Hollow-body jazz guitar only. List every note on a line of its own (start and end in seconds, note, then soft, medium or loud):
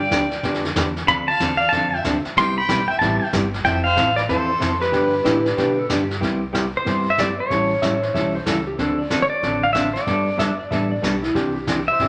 0.10 0.22 D3 medium
0.10 0.23 F3 medium
0.10 0.23 B3 medium
0.10 0.23 D4 medium
0.10 0.23 G4 medium
0.44 0.65 D3 medium
0.44 0.65 F3 medium
0.44 0.65 B3 medium
0.44 0.65 D4 medium
0.44 0.65 G4 medium
0.76 0.87 D3 medium
0.76 0.87 F3 medium
0.76 0.87 B3 medium
0.76 0.88 D4 medium
0.76 0.88 G4 medium
1.06 1.28 D3 medium
1.06 1.29 F3 medium
1.06 1.28 C4 medium
1.06 1.29 D4 medium
1.06 1.29 A4 medium
1.40 1.51 D3 medium
1.40 1.52 F3 medium
1.40 1.52 C4 medium
1.40 1.52 D4 medium
1.40 1.52 A4 medium
1.72 1.93 D3 medium
1.72 1.93 F3 medium
1.72 1.94 C4 medium
1.72 1.94 D4 medium
1.72 1.94 A4 medium
2.05 2.16 D3 medium
2.05 2.16 F3 medium
2.05 2.16 C4 medium
2.05 2.16 D4 medium
2.05 2.16 A4 medium
2.37 2.58 C3 medium
2.37 2.58 G3 medium
2.37 2.58 B3 medium
2.37 2.58 E4 medium
2.37 2.58 G4 medium
2.68 2.80 C3 medium
2.68 2.80 G3 medium
2.68 2.80 B3 medium
2.68 2.80 E4 medium
2.68 2.80 G4 medium
3.01 3.22 C3 medium
3.01 3.22 G3 medium
3.01 3.22 B3 medium
3.01 3.22 E4 medium
3.01 3.23 G4 medium
3.33 3.44 C3 medium
3.33 3.44 G3 medium
3.33 3.44 B3 medium
3.33 3.44 E4 medium
3.33 3.45 G4 medium
3.64 3.86 F3 medium
3.64 3.85 C4 medium
3.64 3.86 E4 medium
3.64 3.86 A4 medium
3.96 4.08 F3 medium
3.96 4.08 C4 medium
3.96 4.08 E4 medium
3.96 4.08 A4 medium
4.29 4.50 F3 medium
4.29 4.50 C4 medium
4.29 4.50 E4 medium
4.29 4.50 A4 medium
4.60 4.72 F3 medium
4.60 4.72 C4 medium
4.60 4.72 E4 medium
4.60 4.72 A4 medium
4.92 5.13 D3 medium
4.92 5.14 F3 medium
4.92 5.14 B3 medium
4.92 5.14 D4 medium
4.92 5.14 G4 medium
5.24 5.36 D3 medium
5.24 5.36 F3 medium
5.24 5.36 B3 medium
5.24 5.36 D4 medium
5.24 5.37 G4 medium
5.56 5.78 D3 medium
5.56 5.78 F3 medium
5.56 5.78 B3 medium
5.56 5.78 D4 medium
5.56 5.79 G4 medium
5.89 6.01 D3 medium
5.89 6.01 F3 medium
5.89 6.01 B3 medium
5.89 6.01 D4 medium
5.89 6.01 G4 medium
6.20 6.42 C3 medium
6.20 6.42 G3 medium
6.20 6.42 B3 medium
6.20 6.42 E4 medium
6.20 6.42 G4 medium
6.53 6.65 C3 medium
6.53 6.65 G3 medium
6.53 6.65 B3 medium
6.53 6.65 E4 medium
6.53 6.65 G4 medium
6.85 7.06 C3 medium
6.85 7.07 G3 medium
6.85 7.07 B3 medium
6.85 7.07 E4 medium
6.85 7.07 G4 medium
7.18 7.29 C3 medium
7.18 7.30 G3 medium
7.18 7.30 B3 medium
7.18 7.30 E4 medium
7.18 7.30 G4 medium
7.50 7.71 E3 medium
7.50 7.71 G3 medium
7.50 7.71 C#4 medium
7.50 7.72 E4 medium
7.50 7.72 A4 medium
7.82 7.93 E3 medium
7.82 7.94 G3 medium
7.82 7.94 C#4 medium
7.82 7.94 E4 medium
7.82 7.94 A4 medium
8.14 8.36 E3 medium
8.14 8.35 G3 medium
8.14 8.36 C#4 medium
8.14 8.36 E4 medium
8.14 8.36 A4 medium
8.47 8.58 E3 medium
8.47 8.58 G3 medium
8.47 8.58 C#4 medium
8.47 8.59 E4 medium
8.47 8.59 A4 medium
8.79 9.00 D3 medium
8.79 9.00 F3 medium
8.79 9.00 C4 medium
8.79 9.00 D4 medium
8.79 9.00 A4 medium
9.10 9.22 D3 medium
9.10 9.22 F3 medium
9.10 9.22 C4 medium
9.10 9.22 D4 medium
9.10 9.22 A4 medium
9.43 9.64 D3 medium
9.43 9.64 F3 medium
9.43 9.65 C4 medium
9.43 9.64 D4 medium
9.43 9.64 A4 medium
9.75 9.86 D3 medium
9.75 9.86 F3 medium
9.75 9.86 C4 medium
9.75 9.87 D4 medium
9.75 9.87 A4 medium
10.07 10.28 G3 medium
10.07 10.28 B3 medium
10.07 10.28 D4 medium
10.07 10.29 A4 medium
10.37 10.50 G3 medium
10.37 10.50 B3 medium
10.37 10.50 D4 medium
10.37 10.50 A4 medium
10.71 10.92 G3 medium
10.71 10.92 B3 medium
10.71 10.92 D4 medium
10.71 10.93 A4 medium
11.02 11.14 G3 medium
11.02 11.15 B3 medium
11.02 11.15 D4 medium
11.02 11.15 A4 medium
11.34 11.56 C3 medium
11.34 11.56 E3 medium
11.34 11.56 D4 medium
11.34 11.57 G4 medium
11.67 11.79 C3 medium
11.67 11.79 E3 medium
11.67 11.79 D4 medium
11.67 11.79 G4 medium
12.00 12.08 C3 medium
12.00 12.08 E3 medium
12.00 12.08 D4 medium
12.00 12.08 G4 medium